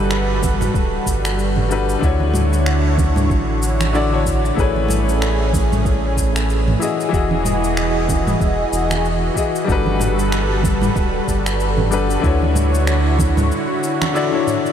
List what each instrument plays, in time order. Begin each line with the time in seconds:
Already playing: analog synth bass G1, grand piano G3 D4 F#4 A4 B4, analog synth pad G3 F#4 A4 B4
0.11 finger snap, shaker
0.43 kick, low conga, shaker
0.61 mid tom, high conga, shaker
0.74 analog synth bass D1, kick, shaker
1.06 analog synth bass G1, kick, shaker
1.25 finger snap, shaker
1.39 shaker
1.56 mid tom, low conga
1.69 grand piano G3 D4 F#4 A4 B4, shaker
1.89 shaker
1.99 analog synth bass D2, grand piano D3 D4 E4, analog synth pad D3 E4 C#5, kick
2.03 grand piano F#4 C#5, shaker
2.20 low conga
2.34 mid tom, high conga, shaker
2.53 shaker
2.66 finger snap, shaker
2.98 kick, low conga, shaker
3.16 mid tom, high conga, shaker
3.30 analog synth bass A1, kick, shaker
3.63 shaker
3.81 finger snap, low conga, shaker
3.92 grand piano D3 D4 E4 F#4 D5, shaker
4.10 grand piano D3 D4 E4 F#4 C#5
4.26 kick, shaker
4.45 shaker
4.54 analog synth bass A1, grand piano A3 E4 G#4, analog synth pad A3 C#4 G#4, kick
4.59 grand piano B4 C#5, shaker
4.76 low conga
4.89 mid tom, high conga, shaker
5.09 shaker
5.22 finger snap, shaker
5.53 kick, low conga, shaker
5.72 mid tom, high conga, shaker
5.85 kick, shaker
6.17 kick, shaker
6.36 finger snap, shaker
6.50 shaker
6.68 mid tom, low conga
6.79 grand piano E3 E4 F#4 G#4 D#5, analog synth pad E3 F#4 G#4 D#5, shaker
7.00 shaker
7.09 grand piano E3 E4 F#4
7.13 analog synth bass E1, grand piano G#4 D#5, kick, shaker
7.31 low conga
7.45 mid tom, high conga, shaker
7.64 shaker
7.77 finger snap, shaker
8.09 kick, low conga, shaker
8.27 mid tom, high conga, shaker
8.40 analog synth bass E1, kick, shaker
8.72 analog synth bass E1, shaker
8.90 finger snap, low conga, shaker
9.05 shaker
9.34 grand piano E3 E4 F#4 G#4 D#5, kick, shaker
9.56 shaker
9.64 analog synth bass G1, grand piano G3 D4 F#4, analog synth pad G3 A4 B4, kick
9.69 grand piano A4 B4, shaker
9.86 low conga
10.00 mid tom, high conga, shaker
10.19 shaker
10.32 finger snap, shaker
10.63 kick, low conga, shaker
10.82 mid tom, high conga, shaker
10.96 analog synth bass D1, kick, shaker
11.28 analog synth bass G1, kick, shaker
11.46 finger snap, shaker
11.60 shaker
11.77 mid tom, low conga
11.90 grand piano G3 D4 F#4 A4 B4, shaker
12.10 shaker
12.20 analog synth bass D2, grand piano D3 D4 E4, analog synth pad D3 E4 F#4 C#5, kick
12.24 grand piano F#4 C#5, shaker
12.42 low conga
12.55 mid tom, high conga, shaker
12.74 shaker
12.87 finger snap, shaker
13.18 kick, low conga, shaker
13.37 mid tom, high conga, shaker
13.52 shaker
13.83 shaker
14.02 finger snap, low conga, shaker
14.13 grand piano D3 D4 E4 F#4 D5, shaker
14.31 grand piano D3 D4 E4 F#4 C#5
14.47 mid tom, shaker
14.66 shaker